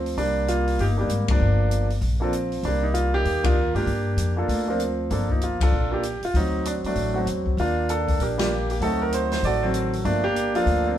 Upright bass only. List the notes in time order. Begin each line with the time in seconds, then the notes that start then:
Already playing: D2
0.17 C2
0.78 G1
1.09 G#1
1.40 G1
2.01 A#1
2.63 C2
3.25 D#2
3.74 G#2
3.86 G2
4.16 F2
4.48 D2
5.10 G1
5.72 A#1
6.22 muted upright bass stroke
6.34 D2
6.84 muted upright bass stroke
6.95 A1
7.26 E2
7.57 D#2
8.19 A#1
8.80 D2
9.43 A1
10.04 G1
10.66 D2